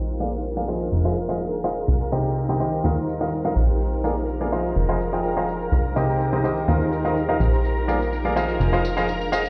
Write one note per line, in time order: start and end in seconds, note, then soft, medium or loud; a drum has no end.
0.00 0.90 A#1 medium
0.00 1.88 G#4 medium
0.00 1.31 A#4 medium
0.00 9.49 A#4 medium
0.00 2.27 F5 medium
0.00 9.49 A#5 medium
0.10 tambourine soft
0.20 0.30 A#3 medium
0.20 0.30 F4 medium
0.20 0.30 G#4 medium
0.20 0.30 A#4 medium
0.20 0.30 D5 medium
0.20 0.30 F5 medium
0.20 tambourine medium
0.34 tambourine soft
0.45 tambourine soft
0.57 0.66 A#3 medium
0.57 0.66 F4 medium
0.57 0.66 G#4 medium
0.57 0.66 A#4 medium
0.57 0.66 D5 medium
0.57 0.66 F5 medium
0.57 tambourine soft
0.68 1.02 F3 medium
0.68 1.02 F4 medium
0.68 1.02 G#4 medium
0.68 1.02 C5 medium
0.68 1.02 D#5 medium
0.68 1.02 F5 medium
0.68 tambourine medium
0.81 tambourine soft
0.92 1.86 F1 medium
0.92 3.56 D#4 medium
0.92 tambourine soft
1.05 1.14 F3 medium
1.05 1.14 F4 medium
1.05 1.14 G#4 medium
1.05 1.14 C5 medium
1.05 1.14 D#5 medium
1.05 1.14 F5 loud
1.05 tambourine soft
1.17 tambourine medium
1.29 1.38 F3 medium
1.29 1.38 F4 medium
1.29 1.38 G#4 medium
1.29 1.38 C5 medium
1.29 1.38 D#5 medium
1.29 1.38 F5 medium
1.29 tambourine soft
1.36 3.13 C5 medium
1.41 tambourine soft
1.53 tambourine soft
1.64 1.74 F4 medium
1.64 1.74 G#4 medium
1.64 1.74 C5 medium
1.64 1.74 D#5 medium
1.64 1.74 F5 loud
1.64 tambourine medium
1.78 tambourine soft
1.88 2.82 C2 medium
1.88 tambourine soft
2.02 tambourine soft
2.12 2.46 C3 medium
2.12 2.46 D#4 medium
2.12 2.46 G4 medium
2.12 2.46 C5 medium
2.12 2.46 D#5 medium
2.12 2.46 G5 medium
2.12 tambourine medium
2.26 tambourine soft
2.37 tambourine soft
2.49 2.58 C3 medium
2.49 2.58 D#4 medium
2.49 2.58 G4 medium
2.49 2.58 C5 medium
2.49 2.58 D#5 medium
2.49 2.58 G5 medium
2.49 tambourine soft
2.60 2.81 D#3 medium
2.60 2.81 D#4 medium
2.60 2.81 G4 medium
2.60 2.81 C5 medium
2.60 2.81 D#5 medium
2.60 2.81 G5 medium
2.60 tambourine medium
2.73 tambourine soft
2.84 3.54 D#2 medium
2.84 3.18 D#3 medium
2.84 3.18 D#4 medium
2.84 3.18 F4 medium
2.84 3.18 A#4 medium
2.84 3.18 D#5 medium
2.84 3.18 F5 medium
2.84 tambourine soft
2.97 tambourine soft
3.09 tambourine medium
3.17 3.30 D#3 medium
3.17 3.30 D#4 medium
3.17 3.30 F4 medium
3.17 5.15 A#4 medium
3.17 3.30 A#4 medium
3.17 3.30 D#5 medium
3.17 6.11 F5 medium
3.17 3.30 F5 medium
3.21 tambourine soft
3.33 tambourine soft
3.45 3.54 D#4 medium
3.45 3.54 F4 medium
3.45 3.54 A#4 medium
3.45 3.54 D#5 medium
3.45 3.54 F5 medium
3.45 tambourine soft
3.56 4.74 A#1 medium
3.56 tambourine medium
3.70 tambourine soft
3.80 5.72 G#4 medium
3.80 tambourine soft
3.94 tambourine soft
4.04 4.14 A#3 medium
4.04 4.14 F4 medium
4.04 4.14 G#4 medium
4.04 4.14 A#4 medium
4.04 4.14 D5 medium
4.04 4.14 F5 medium
4.04 tambourine medium
4.18 tambourine soft
4.29 tambourine soft
4.41 4.50 A#3 medium
4.41 4.50 F4 medium
4.41 4.50 G#4 medium
4.41 4.50 A#4 medium
4.41 4.50 D5 medium
4.41 4.50 F5 medium
4.41 tambourine soft
4.52 4.86 F3 medium
4.52 4.86 F4 medium
4.52 4.86 G#4 medium
4.52 4.86 C5 medium
4.52 4.86 D#5 medium
4.52 4.86 F5 medium
4.52 tambourine medium
4.66 tambourine soft
4.76 5.70 F1 medium
4.76 7.40 D#4 medium
4.76 tambourine soft
4.89 4.98 F3 medium
4.89 4.98 F4 medium
4.89 4.98 G#4 medium
4.89 4.98 C5 medium
4.89 6.97 C5 medium
4.89 4.98 D#5 medium
4.89 4.98 F5 loud
4.89 tambourine soft
5.01 tambourine medium
5.13 5.34 F3 medium
5.13 5.34 F4 medium
5.13 5.34 G#4 medium
5.13 5.34 C5 medium
5.13 5.34 D#5 medium
5.13 5.34 G5 medium
5.13 tambourine soft
5.25 tambourine soft
5.37 5.46 F3 medium
5.37 5.46 F4 medium
5.37 5.46 G#4 medium
5.37 5.46 C5 medium
5.37 5.46 D#5 medium
5.37 5.46 F5 medium
5.37 tambourine soft
5.49 tambourine medium
5.62 tambourine soft
5.72 6.66 C2 medium
5.72 tambourine soft
5.85 tambourine soft
5.96 6.30 C3 medium
5.96 6.30 D#4 medium
5.96 6.30 G4 medium
5.96 6.30 C5 medium
5.96 6.30 D#5 medium
5.96 6.30 G5 medium
5.96 tambourine medium
6.10 tambourine soft
6.21 tambourine soft
6.33 6.42 C3 medium
6.33 6.42 D#4 medium
6.33 6.42 G4 medium
6.33 6.42 C5 medium
6.33 6.42 D#5 medium
6.33 6.42 G5 medium
6.33 tambourine soft
6.44 6.65 D#3 medium
6.44 6.65 D#4 medium
6.44 6.65 G4 medium
6.44 6.65 C5 medium
6.44 6.65 D#5 medium
6.44 6.65 G5 medium
6.44 tambourine medium
6.57 tambourine soft
6.68 7.38 D#2 medium
6.68 7.02 D#3 medium
6.68 7.02 D#4 medium
6.68 7.02 F4 medium
6.68 7.02 A#4 medium
6.68 7.02 D#5 medium
6.68 7.02 F5 medium
6.68 tambourine soft
6.81 tambourine soft
6.93 tambourine medium
7.01 7.14 D#3 medium
7.01 7.14 D#4 medium
7.01 7.14 F4 medium
7.01 8.99 A#4 medium
7.01 7.14 A#4 medium
7.01 7.14 D#5 medium
7.01 9.49 F5 medium
7.01 7.14 F5 medium
7.05 tambourine soft
7.17 tambourine soft
7.29 7.38 D#4 medium
7.29 7.38 F4 medium
7.29 7.38 A#4 medium
7.29 7.38 D#5 medium
7.29 7.38 F5 medium
7.29 tambourine soft
7.40 8.58 A#1 medium
7.40 tambourine medium
7.53 tambourine soft
7.64 9.49 G#4 medium
7.64 tambourine soft
7.78 tambourine soft
7.88 7.98 A#3 medium
7.88 7.98 F4 medium
7.88 7.98 G#4 medium
7.88 7.98 A#4 medium
7.88 7.98 D5 medium
7.88 7.98 F5 medium
7.88 tambourine medium
8.02 tambourine soft
8.13 tambourine soft
8.25 8.34 A#3 medium
8.25 8.34 F4 medium
8.25 8.34 G#4 medium
8.25 8.34 A#4 medium
8.25 8.34 D5 medium
8.25 8.34 F5 medium
8.25 tambourine soft
8.36 8.70 F3 medium
8.36 8.70 F4 medium
8.36 8.70 G#4 medium
8.36 8.70 C5 medium
8.36 8.70 D#5 medium
8.36 8.70 F5 medium
8.36 tambourine medium
8.50 tambourine soft
8.60 9.49 F1 medium
8.60 9.49 D#4 medium
8.60 tambourine soft
8.73 8.82 F3 medium
8.73 8.82 F4 medium
8.73 8.82 G#4 medium
8.73 8.82 C5 medium
8.73 8.82 D#5 medium
8.73 8.82 F5 loud
8.73 tambourine soft
8.85 tambourine medium
8.90 9.49 C5 medium
8.97 9.06 F3 medium
8.97 9.06 F4 medium
8.97 9.06 G#4 medium
8.97 9.06 C5 medium
8.97 9.06 D#5 medium
8.97 9.06 F5 medium
8.97 tambourine soft
9.09 tambourine soft
9.22 tambourine soft
9.32 9.42 F4 medium
9.32 9.42 G#4 medium
9.32 9.42 C5 medium
9.32 9.42 D#5 medium
9.32 9.42 F5 loud
9.32 tambourine medium
9.46 tambourine soft